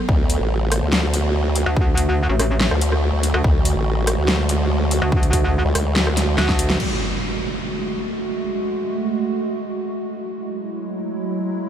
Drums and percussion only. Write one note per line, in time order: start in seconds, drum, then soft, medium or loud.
0.09 kick loud
0.30 closed hi-hat medium
0.72 cross-stick medium
0.72 closed hi-hat medium
0.93 snare loud
1.14 closed hi-hat medium
1.56 closed hi-hat medium
1.77 kick loud
1.97 closed hi-hat medium
2.39 cross-stick medium
2.39 closed hi-hat medium
2.60 snare loud
2.71 cross-stick medium
2.81 closed hi-hat medium
2.92 cross-stick medium
3.23 closed hi-hat medium
3.34 cross-stick medium
3.44 kick loud
3.65 closed hi-hat medium
4.07 cross-stick medium
4.07 closed hi-hat medium
4.28 snare loud
4.49 closed hi-hat medium
4.91 closed hi-hat medium
5.12 kick loud
5.23 closed hi-hat soft
5.33 kick medium
5.33 closed hi-hat medium
5.75 cross-stick medium
5.75 closed hi-hat medium
5.96 snare loud
6.07 cross-stick medium
6.17 snare medium
6.17 closed hi-hat medium
6.38 snare medium
6.49 kick medium
6.49 snare medium
6.59 closed hi-hat medium
6.70 snare medium
6.80 crash medium